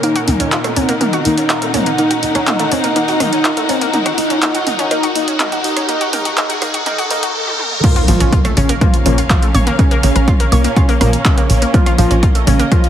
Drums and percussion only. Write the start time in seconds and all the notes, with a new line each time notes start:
0.03 closed hi-hat
0.16 closed hi-hat
0.28 mid tom, open hi-hat
0.40 closed hi-hat
0.52 clap, closed hi-hat
0.64 cross-stick, closed hi-hat
0.76 open hi-hat
0.89 closed hi-hat
1.01 closed hi-hat, mid tom
1.13 closed hi-hat
1.25 open hi-hat
1.38 closed hi-hat
1.50 cross-stick, clap, closed hi-hat
1.62 closed hi-hat
1.74 mid tom, open hi-hat
1.86 closed hi-hat
1.98 closed hi-hat
2.11 closed hi-hat
2.23 open hi-hat
2.35 cross-stick, closed hi-hat
2.47 clap, closed hi-hat, mid tom
2.59 closed hi-hat
2.72 open hi-hat
2.84 closed hi-hat
2.96 closed hi-hat
3.08 open hi-hat
3.20 cross-stick, mid tom, open hi-hat
3.33 closed hi-hat
3.45 clap, closed hi-hat
3.57 closed hi-hat
3.69 open hi-hat
3.81 closed hi-hat
3.94 closed hi-hat, mid tom
4.06 cross-stick, closed hi-hat
4.18 open hi-hat
4.30 closed hi-hat
4.42 clap, closed hi-hat
4.55 closed hi-hat
4.67 mid tom, open hi-hat
4.79 closed hi-hat
4.91 cross-stick, closed hi-hat
5.03 closed hi-hat
5.15 open hi-hat
5.28 closed hi-hat
5.40 clap, closed hi-hat, mid tom
5.52 closed hi-hat
5.64 open hi-hat
5.77 cross-stick, closed hi-hat
5.89 closed hi-hat
6.01 closed hi-hat
6.13 mid tom, open hi-hat
6.25 closed hi-hat
6.37 clap, closed hi-hat
6.50 closed hi-hat
6.62 cross-stick, open hi-hat
6.74 closed hi-hat
6.86 closed hi-hat, mid tom
6.98 open hi-hat
7.11 open hi-hat
7.23 closed hi-hat
7.47 high tom
7.59 mid tom
7.72 mid tom
7.84 kick, closed hi-hat, crash
7.96 closed hi-hat
8.08 mid tom, open hi-hat
8.20 closed hi-hat
8.33 kick, closed hi-hat
8.45 cross-stick, closed hi-hat
8.57 open hi-hat
8.69 closed hi-hat
8.81 kick, closed hi-hat, mid tom
8.94 closed hi-hat
9.06 open hi-hat
9.18 closed hi-hat
9.30 kick, cross-stick, clap, closed hi-hat
9.42 closed hi-hat
9.55 mid tom, open hi-hat
9.67 closed hi-hat
9.79 kick, closed hi-hat
9.91 closed hi-hat
10.03 open hi-hat
10.16 cross-stick, closed hi-hat
10.28 kick, closed hi-hat, mid tom
10.40 closed hi-hat
10.52 open hi-hat
10.64 closed hi-hat
10.77 kick, closed hi-hat
10.89 open hi-hat
11.01 cross-stick, mid tom, open hi-hat
11.13 closed hi-hat
11.25 kick, clap, closed hi-hat
11.38 closed hi-hat
11.50 open hi-hat
11.62 closed hi-hat
11.74 kick, closed hi-hat, mid tom
11.86 cross-stick, closed hi-hat
11.98 open hi-hat
12.11 closed hi-hat
12.23 kick, closed hi-hat
12.35 closed hi-hat
12.47 mid tom, open hi-hat
12.59 closed hi-hat
12.72 kick, cross-stick, closed hi-hat
12.84 closed hi-hat